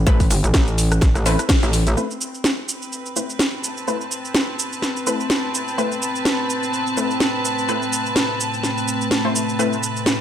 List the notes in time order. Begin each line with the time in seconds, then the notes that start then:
Already playing: A1
0.07 A3 C4 E4 B4, kick, closed hi-hat, cabasa
0.20 kick, open hi-hat, cabasa
0.30 G1, open hi-hat, cabasa
0.44 A1, closed hi-hat, cabasa
0.54 A1, kick, snare, closed hi-hat, cabasa
0.68 closed hi-hat, cabasa
0.78 open hi-hat, cabasa
0.92 cross-stick, closed hi-hat, cabasa
1.01 A1, kick, snare, closed hi-hat, cabasa
1.15 A1, cross-stick, closed hi-hat, cabasa
1.26 A3 C4 E4 B4, open hi-hat, cabasa
1.39 cross-stick, closed hi-hat, cabasa
1.49 kick, snare, closed hi-hat, cabasa
1.63 A1, closed hi-hat, cabasa
1.73 open hi-hat, cabasa
1.87 closed hi-hat, cabasa
1.97 A3 C4 E4 B4 E5, cabasa
2.11 cabasa
2.21 cabasa
2.34 cabasa
2.44 snare, cabasa
2.69 cabasa
2.74 B4
2.82 cabasa
2.92 cabasa
3.06 cabasa
3.16 A3 C4 E4 B4, cabasa
3.30 cabasa
3.39 snare, cabasa
3.57 A5
3.64 cabasa
3.77 cabasa
3.88 A3 C4 E4 B4, cabasa
4.01 cabasa
4.11 cabasa
4.25 cabasa
4.35 snare, cabasa
4.59 cabasa
4.73 cabasa
4.82 snare, cabasa
4.96 cabasa
5.07 A3 C4 E4 B4, cabasa
5.20 cabasa
5.30 snare, cabasa
5.54 cabasa
5.68 cabasa
5.78 A3 C4 E4 B4, cabasa
5.92 cabasa
6.02 cabasa
6.16 cabasa
6.25 snare, cabasa
6.50 cabasa
6.63 cabasa
6.73 cabasa
6.87 cabasa
6.97 A3 C4 E4 B4, cabasa
7.11 cabasa
7.20 snare, cabasa
7.45 cabasa
7.58 cabasa
7.69 A3 C4 E4 B4, cabasa
7.82 cabasa
7.93 cabasa
8.06 cabasa
8.16 snare, cabasa
8.40 cabasa
8.54 cabasa
8.63 snare, cabasa
8.78 cabasa
8.88 cabasa
9.01 cabasa
9.11 snare, cabasa
9.25 A3 C4 E4 C5
9.35 cabasa
9.49 cabasa
9.59 A3 C4 E4 A4 B4 A5, cabasa
9.73 cabasa
9.83 cabasa
9.97 cabasa
10.06 snare, cabasa